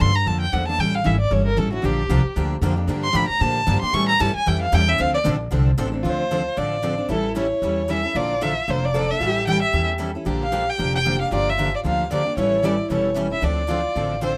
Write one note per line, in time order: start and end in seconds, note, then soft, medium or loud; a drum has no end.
0.00 0.26 G2 medium
0.00 0.10 D3 medium
0.00 0.10 F3 medium
0.00 0.10 A#3 medium
0.00 0.10 D4 loud
0.00 0.11 A4 loud
0.00 0.17 C6 loud
0.15 0.29 A#5 medium
0.26 0.52 F2 medium
0.26 0.45 D3 medium
0.26 0.45 F3 medium
0.26 0.45 A#3 medium
0.26 0.45 D4 medium
0.26 0.45 A4 medium
0.26 0.40 A5 medium
0.41 0.54 G5 medium
0.52 0.78 E2 loud
0.52 0.63 D3 medium
0.52 0.63 F3 loud
0.52 0.63 A#3 medium
0.52 0.63 D4 loud
0.52 0.63 A4 medium
0.52 0.67 F#5 medium
0.68 0.80 A#3 medium
0.68 0.79 D4 medium
0.68 0.79 A4 medium
0.68 0.82 A5 loud
0.79 1.04 A1 medium
0.79 0.98 E3 medium
0.79 0.98 G3 medium
0.79 0.98 C#4 medium
0.79 0.98 E4 medium
0.79 0.98 A4 medium
0.79 0.96 G5 medium
0.95 1.07 F5 medium
1.04 1.30 G#1 medium
1.04 1.15 E3 loud
1.04 1.15 G3 medium
1.04 1.16 C#4 medium
1.04 1.15 E4 loud
1.04 1.15 A4 loud
1.04 1.20 E5 medium
1.20 1.34 D5 medium
1.30 1.57 G1 medium
1.30 1.49 E3 medium
1.30 1.50 G3 medium
1.30 1.49 C#4 medium
1.30 1.50 E4 medium
1.30 1.50 A4 medium
1.30 1.46 C#5 medium
1.46 1.59 A#4 medium
1.57 1.83 A1 medium
1.57 1.67 E3 medium
1.57 1.68 G3 medium
1.57 1.68 C#4 medium
1.57 1.68 E4 loud
1.57 1.72 A4 medium
1.57 1.68 A4 medium
1.71 1.82 C#4 soft
1.71 1.82 E4 medium
1.71 1.86 F#4 medium
1.71 1.82 A4 medium
1.82 2.09 A#1 medium
1.82 2.01 D3 medium
1.82 2.01 F3 medium
1.82 2.01 A#3 medium
1.82 2.02 D4 medium
1.82 2.01 G4 medium
1.82 2.37 G4 medium
2.09 2.24 C2 medium
2.09 2.20 D3 medium
2.09 2.20 F3 medium
2.09 2.20 A#3 loud
2.09 2.21 D4 loud
2.09 2.21 G4 medium
2.36 2.61 D2 medium
2.36 2.54 D3 medium
2.36 2.55 F3 medium
2.36 2.55 A#3 medium
2.36 2.54 D4 medium
2.36 2.55 G4 medium
2.61 2.87 F2 loud
2.61 2.72 D3 medium
2.61 2.73 F3 medium
2.61 2.73 A#3 medium
2.61 2.73 D4 loud
2.61 2.73 G4 loud
2.76 2.87 A#3 medium
2.76 2.87 D4 medium
2.76 2.87 G4 medium
2.87 3.14 G2 medium
2.87 3.06 D3 medium
2.87 3.06 F3 medium
2.87 3.07 A#3 medium
2.87 3.07 D4 medium
2.87 3.07 G4 medium
3.03 3.17 C6 loud
3.13 3.29 A2 medium
3.13 3.24 D3 loud
3.13 3.24 F3 medium
3.13 3.24 A#3 medium
3.13 3.25 D4 medium
3.13 3.24 G4 loud
3.13 3.28 B5 medium
3.28 3.43 A#5 loud
3.28 muted upright bass stroke soft
3.39 3.67 A#2 medium
3.39 3.59 D3 medium
3.39 3.59 F3 medium
3.39 3.59 A#3 medium
3.39 3.59 D4 medium
3.39 3.59 G4 medium
3.39 3.81 A5 loud
3.66 3.81 G2 loud
3.66 3.77 D3 medium
3.66 3.77 F3 medium
3.66 3.77 A#3 loud
3.66 3.77 D4 loud
3.66 3.78 G4 medium
3.82 3.94 A#3 medium
3.82 3.94 D4 medium
3.82 3.93 G4 medium
3.82 3.95 C6 loud
3.82 muted upright bass stroke soft
3.93 4.19 A2 medium
3.93 4.12 E3 medium
3.93 4.12 G3 medium
3.93 4.12 C#4 medium
3.93 4.12 E4 medium
3.93 4.12 A4 medium
3.93 4.08 C#6 loud
4.09 4.22 A#5 loud
4.20 4.34 G2 loud
4.20 4.30 E3 medium
4.20 4.30 G3 loud
4.20 4.30 C#4 medium
4.20 4.30 E4 loud
4.20 4.30 A4 loud
4.20 4.35 A5 loud
4.35 4.50 G#5 loud
4.35 muted upright bass stroke soft
4.46 4.72 F2 loud
4.46 4.64 E3 medium
4.46 4.65 G3 medium
4.46 4.65 C#4 medium
4.46 4.65 E4 medium
4.46 4.65 A4 medium
4.46 4.61 G5 medium
4.62 4.76 F5 loud
4.73 4.98 E2 loud
4.73 4.83 E3 loud
4.73 4.83 G3 loud
4.73 4.83 C#4 loud
4.73 4.83 E4 loud
4.73 4.83 A4 loud
4.73 4.90 G5 loud
4.86 4.99 C#4 soft
4.86 4.99 E4 medium
4.86 4.98 A4 medium
4.86 5.03 E5 loud
4.98 5.25 D2 medium
4.98 5.17 D3 medium
4.98 5.17 F3 medium
4.98 5.17 C4 medium
4.98 5.17 D4 medium
4.98 5.17 A4 medium
4.98 5.14 F5 loud
5.14 5.21 D5 loud
5.24 5.51 A#1 loud
5.24 5.35 D3 medium
5.24 5.35 F3 loud
5.24 5.35 C4 loud
5.24 5.35 D4 loud
5.24 5.35 A4 loud
5.52 5.77 C2 medium
5.52 5.70 D3 medium
5.52 5.70 F3 medium
5.52 5.70 C4 medium
5.52 5.70 D4 medium
5.52 5.70 A4 medium
5.78 6.04 A1 loud
5.78 5.88 D3 medium
5.78 5.88 F3 loud
5.78 5.88 C4 medium
5.78 5.88 D4 loud
5.78 5.88 A4 loud
5.92 6.04 C4 medium
5.92 6.03 D4 medium
5.92 6.03 A4 medium
6.03 6.46 D2 medium
6.03 6.22 D3 medium
6.03 6.22 F3 medium
6.03 6.23 C4 medium
6.03 6.22 D4 medium
6.03 7.05 F4 medium
6.03 6.23 A4 medium
6.07 6.60 C5 medium
6.31 6.41 D3 medium
6.31 6.41 F3 medium
6.31 6.41 C4 medium
6.31 6.41 D4 medium
6.31 6.41 A4 medium
6.57 6.99 A1 medium
6.57 6.75 D3 medium
6.57 6.75 F3 medium
6.57 6.75 C4 medium
6.57 6.75 D4 medium
6.57 6.76 A4 medium
6.57 7.10 D5 medium
6.82 6.93 D3 medium
6.82 6.93 F3 medium
6.82 6.93 C4 medium
6.82 6.93 D4 medium
6.82 6.94 A4 medium
6.98 7.09 C4 soft
6.98 7.09 D4 soft
6.98 7.09 A4 soft
7.09 7.51 A1 medium
7.09 7.28 E3 medium
7.09 7.28 G3 medium
7.09 7.28 C#4 medium
7.09 7.28 E4 medium
7.09 7.28 A4 medium
7.09 7.35 A4 medium
7.36 7.46 E3 medium
7.36 7.46 G3 medium
7.36 7.46 C#4 medium
7.36 7.46 E4 medium
7.36 7.46 A4 medium
7.36 7.91 C#5 medium
7.62 8.04 E2 medium
7.62 7.80 E3 medium
7.62 7.81 G3 medium
7.62 7.81 C#4 medium
7.62 7.81 E4 medium
7.62 7.81 A4 medium
7.90 7.99 E3 medium
7.90 7.99 G3 medium
7.90 7.99 C#4 medium
7.90 7.99 E4 medium
7.90 8.00 A4 medium
7.90 8.18 E5 medium
8.03 8.16 C#4 soft
8.03 8.15 E4 medium
8.03 8.14 A4 medium
8.15 8.57 A#1 medium
8.15 8.34 D3 medium
8.15 8.34 F3 medium
8.15 8.34 A#3 medium
8.15 8.34 D4 medium
8.15 8.94 F4 medium
8.15 8.34 A4 medium
8.15 8.44 D5 loud
8.42 8.52 D3 medium
8.42 8.52 F3 medium
8.42 8.52 A#3 medium
8.42 8.52 D4 medium
8.42 8.52 A4 medium
8.42 8.72 E5 medium
8.68 9.10 F1 medium
8.68 8.86 D3 medium
8.68 8.87 F3 medium
8.68 8.87 A#3 medium
8.68 8.87 D4 medium
8.68 8.87 A4 medium
8.68 8.86 C5 medium
8.85 9.12 D5 medium
8.95 9.05 D3 medium
8.95 9.05 F3 medium
8.95 9.05 A#3 medium
8.95 9.05 D4 medium
8.95 9.06 A4 medium
9.11 9.22 A#3 soft
9.11 9.22 D4 medium
9.11 9.21 A4 medium
9.11 9.47 E5 medium
9.20 9.63 A1 medium
9.20 9.40 E3 medium
9.20 9.40 G3 medium
9.20 9.40 C#4 medium
9.20 9.40 E4 medium
9.20 10.11 G4 loud
9.20 9.40 A4 medium
9.47 9.57 E3 medium
9.47 9.57 G3 medium
9.47 9.58 C#4 medium
9.47 9.58 E4 medium
9.47 9.58 A4 medium
9.47 9.61 G5 loud
9.62 9.87 E5 medium
9.73 10.16 E2 medium
9.73 9.92 E3 medium
9.73 9.92 G3 medium
9.73 9.92 C#4 medium
9.73 9.93 E4 medium
9.73 9.92 A4 medium
9.99 10.10 E3 medium
9.99 10.10 G3 medium
9.99 10.10 C#4 medium
9.99 10.10 E4 medium
9.99 10.10 A4 medium
10.15 10.26 C#4 soft
10.15 10.26 E4 soft
10.15 10.26 A4 medium
10.26 10.68 A#1 medium
10.26 10.44 D3 medium
10.26 10.44 F3 medium
10.26 10.45 A#3 medium
10.26 10.45 D4 medium
10.26 10.45 G4 medium
10.43 10.71 F5 medium
10.52 10.62 D3 medium
10.52 10.63 F3 medium
10.52 10.63 A#3 medium
10.52 10.63 D4 medium
10.52 10.63 G4 medium
10.69 10.95 G5 medium
10.78 11.22 F1 medium
10.78 10.97 D3 medium
10.78 10.97 F3 medium
10.78 10.97 A#3 medium
10.78 10.98 D4 medium
10.78 10.97 G4 medium
10.95 11.19 G5 loud
11.05 11.16 D3 medium
11.05 11.16 F3 medium
11.05 11.16 A#3 medium
11.05 11.16 D4 medium
11.05 11.16 G4 medium
11.20 11.31 A#3 soft
11.20 11.32 D4 medium
11.20 11.31 G4 medium
11.20 11.32 F5 medium
11.31 11.74 G1 medium
11.31 11.50 D3 medium
11.31 11.51 F3 medium
11.31 11.50 A#3 medium
11.31 11.51 D4 medium
11.31 12.41 F4 medium
11.31 11.50 G4 medium
11.31 11.51 D5 loud
11.49 11.75 E5 medium
11.58 11.68 D3 medium
11.58 11.68 F3 medium
11.58 11.69 A#3 medium
11.58 11.69 D4 medium
11.58 11.69 G4 medium
11.76 11.80 D5 medium
11.84 12.27 D2 medium
11.84 12.02 D3 medium
11.84 12.03 F3 medium
11.84 12.03 A#3 medium
11.84 12.03 D4 medium
11.84 12.03 G4 medium
11.84 12.10 F5 medium
12.11 12.21 D3 medium
12.11 12.21 F3 medium
12.11 12.21 A#3 medium
12.11 12.22 D4 medium
12.11 12.22 G4 medium
12.11 12.37 D5 medium
12.25 12.37 A#3 soft
12.25 12.37 D4 soft
12.25 12.37 G4 medium
12.37 12.79 A1 medium
12.37 12.55 E3 medium
12.37 12.56 G3 medium
12.37 12.56 C#4 medium
12.37 12.56 E4 medium
12.37 12.56 A4 medium
12.37 12.66 C#5 medium
12.63 12.73 E3 medium
12.63 12.74 G3 medium
12.63 12.74 C#4 medium
12.63 12.74 E4 medium
12.63 12.74 A4 medium
12.63 12.90 D5 medium
12.90 13.32 E1 medium
12.90 13.09 E3 medium
12.90 13.09 G3 medium
12.90 13.09 C#4 medium
12.90 13.09 E4 medium
12.90 13.09 A4 medium
12.90 13.15 C#5 medium
13.14 13.26 E3 medium
13.14 13.26 G3 medium
13.14 13.26 C#4 medium
13.14 13.26 E4 medium
13.14 13.27 A4 medium
13.30 13.42 C#4 soft
13.30 13.42 E4 soft
13.30 13.42 A4 medium
13.30 13.46 E5 medium
13.42 13.85 D2 medium
13.42 13.61 D3 medium
13.42 13.61 F3 medium
13.42 13.61 C4 medium
13.42 13.62 D4 medium
13.42 13.62 A4 medium
13.42 14.23 D5 medium
13.69 13.80 D3 medium
13.69 13.80 F3 medium
13.69 13.80 C4 medium
13.69 13.80 D4 medium
13.69 14.33 F4 medium
13.69 13.80 A4 medium
13.95 14.38 A1 medium
13.95 14.14 D3 medium
13.95 14.14 F3 medium
13.95 14.14 C4 medium
13.95 14.14 D4 medium
13.95 14.14 A4 medium
14.22 14.32 D3 medium
14.22 14.32 F3 medium
14.22 14.32 C4 medium
14.22 14.33 D4 loud
14.22 14.33 A4 loud
14.22 14.38 C5 medium